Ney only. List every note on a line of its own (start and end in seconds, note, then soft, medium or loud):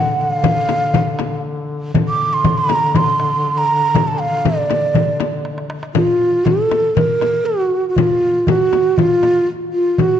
0.00 0.23 F#5 medium
0.21 1.40 F5 medium
2.08 2.35 D6 medium
2.33 2.60 C6 loud
2.58 2.97 A#5 loud
2.96 3.59 C6 medium
3.58 4.09 A#5 loud
4.07 4.22 A5 medium
4.20 4.58 F5 loud
4.57 5.67 D5 medium
5.94 6.47 F4 medium
6.46 6.97 A4 medium
6.96 7.47 A#4 medium
7.46 7.88 F#4 medium
7.89 7.97 F#4 medium
7.96 8.49 F4 medium
8.48 8.99 F#4 medium
8.97 9.46 F4 medium
9.73 10.01 F4 medium
9.99 10.20 F#4 medium